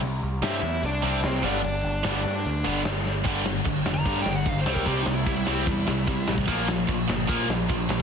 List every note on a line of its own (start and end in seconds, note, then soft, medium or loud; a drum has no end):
0.02 0.21 C2 loud
0.02 open hi-hat medium
0.23 0.41 C2 loud
0.42 0.61 G2 medium
0.42 0.59 C3 loud
0.42 0.59 G3 medium
0.42 0.59 C4 loud
0.42 0.60 E4 loud
0.42 0.81 E4 medium
0.42 0.82 E5 loud
0.42 snare loud
0.42 open hi-hat medium
0.62 0.82 E2 medium
0.83 1.02 C2 loud
0.83 1.22 D4 medium
0.83 1.26 D5 loud
0.83 open hi-hat medium
1.03 1.22 C2 medium
1.03 1.20 C3 loud
1.03 1.20 G3 loud
1.03 1.20 C4 loud
1.03 1.20 E4 loud
1.24 1.42 C2 medium
1.24 1.43 C4 medium
1.24 1.44 C5 medium
1.24 snare loud
1.24 open hi-hat medium
1.43 1.62 G1 medium
1.43 1.60 G2 medium
1.43 1.60 D3 loud
1.43 1.60 G3 loud
1.43 1.61 B3 medium
1.43 1.60 D4 loud
1.43 2.82 D4 medium
1.43 2.82 D5 medium
1.64 1.83 G1 medium
1.64 open hi-hat medium
1.84 2.03 G1 loud
2.04 2.23 G1 loud
2.04 2.21 G2 medium
2.04 2.21 D3 loud
2.04 2.21 G3 loud
2.04 2.21 B3 loud
2.04 2.21 D4 loud
2.04 snare loud
2.04 open hi-hat medium
2.25 2.44 G2 medium
2.45 2.64 D2 medium
2.45 open hi-hat medium
2.64 2.85 G1 loud
2.64 2.81 G2 loud
2.64 2.81 D3 loud
2.64 2.81 G3 loud
2.64 2.81 B3 loud
2.64 2.81 D4 loud
2.85 3.23 G1 loud
2.85 snare loud
2.85 open hi-hat medium
3.06 snare medium
3.24 3.60 G1 medium
3.24 3.44 G2 medium
3.24 3.44 D3 loud
3.24 3.44 G3 loud
3.24 kick loud
3.24 crash loud
3.24 crash medium
3.45 3.63 G2 medium
3.45 3.63 D3 medium
3.45 snare loud
3.65 3.83 G1 medium
3.65 3.84 G2 medium
3.65 3.84 D3 medium
3.65 kick loud
3.65 crash medium
3.85 4.03 F1 medium
3.85 4.04 G2 medium
3.85 4.04 D3 medium
3.85 snare loud
3.94 4.20 A#5 medium
4.05 4.24 G2 medium
4.05 4.23 G2 medium
4.05 4.25 D3 loud
4.05 4.25 G3 loud
4.05 kick loud
4.05 crash medium
4.22 4.43 G1 medium
4.22 4.44 G2 medium
4.22 4.44 D3 medium
4.22 4.34 G5 medium
4.26 snare medium
4.35 4.49 F#5 medium
4.46 4.63 G1 medium
4.46 4.65 G2 medium
4.46 4.65 D3 medium
4.46 4.61 F5 medium
4.46 kick loud
4.46 crash medium
4.61 4.73 C5 medium
4.66 4.84 C2 medium
4.66 4.84 C3 medium
4.66 4.84 G3 medium
4.66 4.85 C4 loud
4.66 snare loud
4.73 4.86 A#4 medium
4.73 kick medium
4.85 5.04 C2 medium
4.85 5.05 C3 medium
4.85 5.05 G3 loud
4.85 5.05 C4 loud
4.85 5.00 G4 medium
4.85 kick loud
4.85 crash medium
5.02 5.14 D#4 medium
5.06 5.24 C2 medium
5.06 5.24 C3 medium
5.06 5.25 G3 medium
5.06 snare loud
5.15 6.32 E4 loud
5.26 5.44 C2 medium
5.26 5.44 C3 medium
5.26 5.45 G3 medium
5.26 kick loud
5.26 crash medium
5.45 5.65 C2 medium
5.45 5.65 C3 medium
5.45 5.66 G3 medium
5.45 5.66 C4 loud
5.45 snare loud
5.67 5.85 E2 loud
5.67 5.86 C3 medium
5.67 5.86 G3 medium
5.67 kick loud
5.67 crash medium
5.87 6.05 C2 loud
5.87 6.06 C3 medium
5.87 6.06 G3 medium
5.87 snare loud
6.07 6.26 C3 medium
6.07 6.25 C3 medium
6.07 6.26 G3 medium
6.07 kick loud
6.07 crash medium
6.28 6.45 A1 loud
6.28 6.47 C3 medium
6.28 6.47 G3 medium
6.28 snare loud
6.38 kick medium
6.47 6.83 A#1 loud
6.47 6.67 A#2 medium
6.47 6.67 F3 medium
6.47 6.67 A#3 loud
6.47 kick loud
6.47 crash medium
6.68 6.87 A#2 medium
6.68 6.87 F3 loud
6.68 snare loud
6.88 7.06 A#1 loud
6.88 7.07 A#2 medium
6.88 7.07 F3 loud
6.88 kick loud
6.88 crash medium
7.08 7.26 G1 medium
7.08 7.28 A#2 medium
7.08 7.28 F3 medium
7.08 snare loud
7.29 7.48 A#2 medium
7.29 7.46 A#2 medium
7.29 7.48 F3 loud
7.29 7.49 A#3 loud
7.29 kick loud
7.29 crash medium
7.48 7.66 A#1 medium
7.48 7.67 A#2 medium
7.48 7.68 F3 medium
7.48 snare loud
7.69 7.87 A#1 medium
7.69 7.88 A#2 medium
7.69 7.88 F3 medium
7.69 kick loud
7.69 crash medium
7.89 8.02 A#1 medium
7.89 8.02 A#2 medium
7.89 8.02 F3 medium
7.89 snare loud